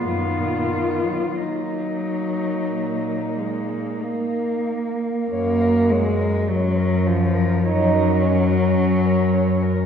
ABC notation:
X:1
M:4/4
L:1/16
Q:1/4=50
K:Ebm
V:1 name="Cello"
F4 E8- E2 z2 | [K:F#] c A c A c A c A c A c A c A c A |]
V:2 name="Cello"
C4 B,12 | [K:F#] z8 D2 C6 |]
V:3 name="Cello" clef=bass
G,, B,, E, G, G,6 A,2 B,4 | [K:F#] A,2 G,2 F,2 E,2 F,8 |]
V:4 name="Cello" clef=bass
E,4 z4 B,,4 z4 | [K:F#] F,,4 F,,4 F,,4 F,,4 |]